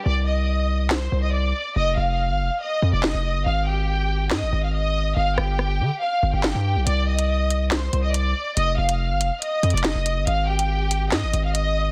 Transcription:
<<
  \new Staff \with { instrumentName = "Violin section" } { \time 4/4 \key c \minor \tempo 4 = 141 <d'' d'''>8 <ees'' ees'''>4. <c'' c'''>8. <ees'' ees'''>16 <d'' d'''>4 | <ees'' ees'''>8 <f'' f'''>4. <ees'' ees'''>8. <d'' d'''>16 <ees'' ees'''>4 | <f'' f'''>8 <g' g''>4. <ees'' ees'''>8. <f'' f'''>16 <ees'' ees'''>4 | <f'' f'''>8 <g' g''>4. <f'' f'''>8. <g' g''>4~ <g' g''>16 |
<d'' d'''>8 <ees'' ees'''>4. <c'' c'''>8. <ees'' ees'''>16 <d'' d'''>4 | <ees'' ees'''>8 <f'' f'''>4. <ees'' ees'''>8. <d'' d'''>16 <ees'' ees'''>4 | <f'' f'''>8 <g' g''>4. <ees'' ees'''>8. <f'' f'''>16 <ees'' ees'''>4 | }
  \new Staff \with { instrumentName = "808-style bass" } { \clef bass \time 4/4 \key c \minor c,2~ c,8 c,4 r8 | f,,8 f,,8. g,,16 f,,16 r8. f,16 f,,8 f,,8 g,,16 | aes,,2 aes,16 aes,,16 aes,,4. | g,,8 g,,4 d16 r8. g,,16 g,,8 g,8 b,,16 |
c,2~ c,8 c,4 r8 | f,,8 f,,8. g,,16 f,,16 r8. f,16 f,,8 f,,8 g,,16 | aes,,2 aes,16 aes,,16 aes,,4. | }
  \new DrumStaff \with { instrumentName = "Drums" } \drummode { \time 4/4 r4 r4 <hc sn>4 r4 | r4 r4 r4 <hc sn>4 | r4 r4 <hc sn>4 r4 | r8 ss8 ss4 r4 <hc sn>4 |
hh8. hh16 r8 hh8 <hc hh sn>8 hh8 hh4 | hh8. hh16 r8 hh8 \tuplet 3/2 { hh16 r16 r16 hh16 hh16 hh16 } <hc hh sn>8 hh8 | hh8. hh16 r8 hh8 <hc hh sn>8 hh8 hh4 | }
>>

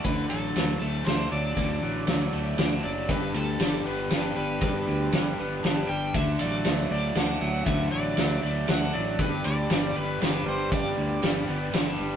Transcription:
<<
  \new Staff \with { instrumentName = "Electric slide guitar" } { \time 3/4 \key d \major \tempo 4 = 118 b'8 a'4 a'8 c''8 d''8~ | d''2~ d''8 d''8 | b'8 a'4 b'8 b'8 b'8~ | b'2~ b'8 g''8 |
e''8 d''4 d''8 fis''8 fis''8 | e''8 d''4 d''8 fis''8 d''8 | b'8 d''4 b'8 b'8 c''8 | d''2 r4 | }
  \new Staff \with { instrumentName = "Harmonium" } { \time 3/4 \key d \major << { r2. | r2. | r2. | r2. |
<e' fis''>2.~ | <e' fis''>2. | <g' b''>2.~ | <g' b''>2. | } \\ { r2. | r2. | r2. | r2. |
d''2.~ | d''2.~ | d''2.~ | d''2. | } >> }
  \new Staff \with { instrumentName = "Steel-string acoustic guitar" } { \time 3/4 \key d \major <d a e' fis' a'>4 <a e' fis' a'>4 <a e' fis' a'>8 <e' fis' a'>8 | <d a e' fis' a'>4 <a e' fis' a'>4 <a e' fis' a'>4 | <g d' g' b'>4 <g d' g' b'>4 <g d' g' b'>4 | <g d' g' b'>4 <g d' g' b'>8 <d' g' b'>8 <g d' g' b'>8 <d' g' b'>8 |
<d a e' fis' a'>4 <a e' fis' a'>4 <a e' fis' a'>4 | <d a e' fis' a'>4 <a e' fis' a'>4 <a e' fis' a'>8 <e' fis' a'>8 | <g d' g' b'>4 <g d' g' b'>8 <d' g' b'>8 <g d' g' b'>8 <d' g' b'>8 | <g d' g' b'>4 <g d' g' b'>8 <d' g' b'>8 <g d' g' b'>8 <d' g' b'>8 | }
  \new Staff \with { instrumentName = "Overdriven electric guitar" } { \clef bass \time 3/4 \key d \major d8 fis8 fis8 a8 d'8 fis8 | d8 fis8 fis8 a8 d'8 fis8 | g,8 d8 g8 b8 d'8 g8 | g,8 d8 g8 b8 d'8 g8 |
d8 fis8 fis8 a8 d'8 fis8 | d8 fis8 fis8 a8 d'8 fis8 | g,8 d8 g8 b8 d'8 g8 | g,8 d8 g8 b8 d'8 g8 | }
  \new Staff \with { instrumentName = "Fingered electric bass" } { \clef bass \time 3/4 \key d \major d,8 a,,8 d,8 d,8 d,8 d,8 | d,8 a,,8 d,8 d,8 d,8 fis,,8 | g,,8 d,8 g,,8 g,,8 g,,8 g,,8 | g,,8 d,8 g,,8 g,,8 g,,8 g,,8 |
d,8 a,,8 d,8 d,8 d,8 d,8 | d,8 a,,8 d,8 d,8 d,8 a,,8 | g,,8 d,8 g,,8 g,,8 g,,8 g,,8 | g,,8 d,8 g,,8 g,,8 g,,8 g,,8 | }
  \new DrumStaff \with { instrumentName = "Drums" } \drummode { \time 3/4 <bd cymr>8 cymr8 <cymr sn>4 <cymr sn>4 | <bd cymr>4 <cymr sn>4 <cymr sn>4 | <bd cymr>8 cymr8 <cymr sn>4 <cymr sn>4 | <bd cymr>4 <cymr sn>4 <cymr sn>4 |
<bd cymr>8 cymr8 <cymr sn>4 <cymr sn>4 | <bd cymr>4 <cymr sn>4 <cymr sn>4 | <bd cymr>8 cymr8 <cymr sn>4 <cymr sn>4 | <bd cymr>4 <cymr sn>4 <cymr sn>4 | }
>>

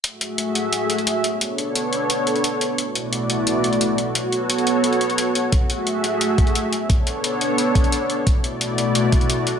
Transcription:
<<
  \new Staff \with { instrumentName = "Analog synth pad" } { \time 4/4 \key fis \minor \tempo 4 = 175 <a fis' gis' e''>2.~ <a fis' gis' e''>8 <b d' a' cis''>8~ | <b d' a' cis''>1 | <b, a e' fis' d''>2.~ <b, a e' fis' d''>8 <b fis' a' cis''>8~ | <b fis' a' cis''>1 |
<a fis' gis' e''>2.~ <a fis' gis' e''>8 <b d' a' cis''>8~ | <b d' a' cis''>1 | <b, a e' fis' d''>2.~ <b, a e' fis' d''>8 <b a' cis''>8 | }
  \new DrumStaff \with { instrumentName = "Drums" } \drummode { \time 4/4 hh8 hh8 hh8 hh8 hh8 hh16 hh16 hh8 hh8 | hh8 hh8 hh8 hh8 hh8 hh16 hh16 hh8 hh8 | hh8 hh8 hh8 hh8 hh8 hh16 hh16 hh8 hh8 | hh8 hh8 hh16 hh16 hh8 hh16 hh16 hh16 hh16 hh8 hh8 |
<hh bd>8 hh8 hh8 hh8 hh8 <hh bd>16 hh16 hh8 hh8 | <hh bd>8 hh8 hh8 hh8 hh8 <hh bd>16 hh16 hh8 hh8 | <hh bd>8 hh8 hh8 hh8 hh8 <hh bd>16 hh16 hh8 hh8 | }
>>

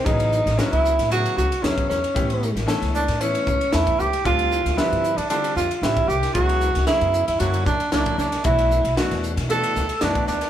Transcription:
<<
  \new Staff \with { instrumentName = "Tenor saxophone" } { \time 4/4 \key a \minor \tempo 4 = 114 ees'4 cis'16 e'8. fis'8 fis'8 cis'8 cis'8~ | cis'4 r8 d'8 cis'4 e'8 g'8 | f'4 e'8. d'16 d'8 f'16. f'32 e'8 g'8 | ges'4 fes'8. fes'16 ges'8 d'8 d'8 d'8 |
e'4 fis'8 r8 a'4 d'8 d'8 | }
  \new Staff \with { instrumentName = "Grand piano" } { \time 4/4 \key a \minor <cis e fis b gis'>8 r8 <cis fis b e' fis'>8 r8 <cis fis b e' gis'>8 r8 <cis fis b e' gis'>8 r8 | <e a b cis' g'>8 r8 <e a b cis' a'>8 r8 <e a b cis' e'>8 r8 <e a b cis' a'>8 r8 | <d g c' f' a'>8 r8 <d f g c' b'>8 r8 <d g c' f' a'>8 r8 <d g c' f' g'>8 r8 | <des ges ces' fes' aes'>8 r8 <des ges ces' fes' aes'>8 r8 <d ges bes des' fes'>8 r8 <d ges bes des' fes'>8 r8 |
<b, e a d' fis'>8 r8 <b, e a d' fis'>8 r8 <b, e a d' fis'>8 r8 <b, e a d' fis'>8 r8 | }
  \new Staff \with { instrumentName = "Upright bass" } { \clef bass \time 4/4 \key a \minor a,,8. a,,16 r16 cis,8 a,8 r16 cis,16 r16 e,16 r16 e,16 r16 | a,,8. a,,16 r16 cis,8 a,8 r16 cis,16 r16 e,16 r16 cis,16 r16 | d,8. d,16 r16 g,8 d8 r16 f,16 r16 a,,16 r16 c,16 r16 | des,8. des,16 r16 ges,8 f,16 ges,8 bes,16 r16 des,16 r16 des,16 r16 |
b,,8. b,,16 r16 e,8 b,8 r16 d,16 r16 fis,16 r16 d,16 r16 | }
  \new DrumStaff \with { instrumentName = "Drums" } \drummode { \time 4/4 <hhp bd cymr>16 cymr16 hhp16 <cymr sn>16 <hhp cymr sn>16 cymr16 hhp16 <cymr sn>16 <hhp cymr>16 cymr16 hhp16 cymr16 <hhp cymr sn>16 <bd cymr>16 <hhp sn>16 cymr16 | <hhp bd cymr>16 cymr16 hhp16 <cymr sn>16 <hhp cymr sn>16 <cymr sn>16 hhp16 <cymr sn>16 <hhp cymr>16 cymr16 <hhp bd>16 cymr16 <hhp cymr sn>16 <bd cymr>16 hhp16 cymr16 | <hhp bd cymr>16 cymr16 hhp16 <cymr sn>16 <hhp cymr sn>16 cymr16 hhp16 cymr16 <hhp cymr>16 cymr16 <hhp sn>16 cymr16 <hhp cymr sn>16 <bd cymr>16 hhp16 <cymr sn>16 | <hhp bd cymr>16 cymr16 hhp16 <cymr sn>16 <hhp cymr sn>16 cymr16 hhp16 cymr16 <hhp cymr>16 cymr16 <hhp bd sn>16 cymr16 <hhp cymr sn>16 <bd cymr>16 <hhp sn>16 <cymr sn>16 |
<hhp bd cymr>16 cymr16 hhp16 cymr16 <hhp cymr sn>16 <cymr sn>16 hhp16 <cymr sn>16 <hhp cymr>16 cymr16 <hhp sn>16 cymr16 <hhp cymr sn>16 <bd cymr>16 <hhp sn>16 <cymr sn>16 | }
>>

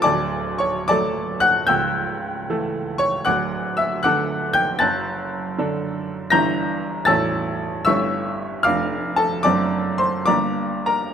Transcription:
<<
  \new Staff \with { instrumentName = "Grand piano" } { \time 6/8 \key d \major \tempo 4. = 76 <d'' a'' d'''>4 <cis'' cis'''>8 <d'' a'' d'''>4 <fis'' fis'''>8 | <g'' e''' g'''>2 r8 <cis'' cis'''>8 | <fis'' d''' fis'''>4 <e'' e'''>8 <fis'' d''' fis'''>4 <g'' g'''>8 | <a'' fis''' a'''>2 r4 |
\key d \minor <bes'' g''' bes'''>4. <a'' e''' a'''>4. | <e'' cis''' e'''>4. <f'' d''' f'''>4 <a' a''>8 | <d'' a'' d'''>4 <c'' c'''>8 <d'' bes'' d'''>4 <bes' bes''>8 | }
  \new Staff \with { instrumentName = "Grand piano" } { \clef bass \time 6/8 \key d \major <d,, d,>4. <fis a a'>4. | <cis,, cis,>4. <e a a'>4. | <d,, d,>4. <d a a'>4. | <fis,, fis,>4. <d d' a'>4. |
\key d \minor <g,, g, e d' e'>4. <a,,, a,, a cis' e'>4. | <g,, g, a cis' e'>4. <f,, f, a d'>4. | <fis,, fis, a c' d'>4. <g,, g, g bes d'>4. | }
>>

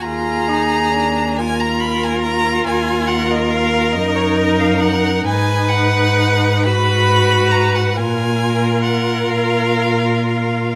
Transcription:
<<
  \new Staff \with { instrumentName = "Violin" } { \time 12/8 \key bes \phrygian \tempo 4. = 46 bes''4. aes''16 bes''16 ces'''16 aes''16 bes''8 aes''8 ges''16 ees''16 f''8 ees''16 des''16 ees''16 f''16 ges''8 | aes''8 ges''4 ces'''4 bes''16 ges''16 aes''4 ges''8 f''4 f''8 | }
  \new Staff \with { instrumentName = "Violin" } { \time 12/8 \key bes \phrygian aes'4. bes'4. bes'2. | ces''4. ces''4. bes'2. | }
  \new Staff \with { instrumentName = "Viola" } { \time 12/8 \key bes \phrygian f'8 ees'8 d'8 f'2. ees'4. | ees'4. ges'4. f'2. | }
  \new Staff \with { instrumentName = "Cello" } { \clef bass \time 12/8 \key bes \phrygian ees,2. ees,4. ges,4. | aes,2. bes,4. bes,4. | }
>>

